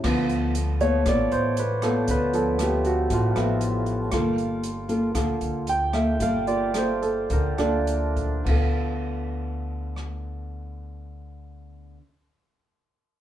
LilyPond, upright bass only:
\new Staff \with { instrumentName = "Upright bass" } { \clef bass \time 4/4 \key d \minor \tempo 4 = 112 d,2 a,,8 a,,4. | d,2 a,,8 a,,4. | g,,2 d,8 d,4. | g,,2 d,8 d,4. |
d,1~ | d,1 | }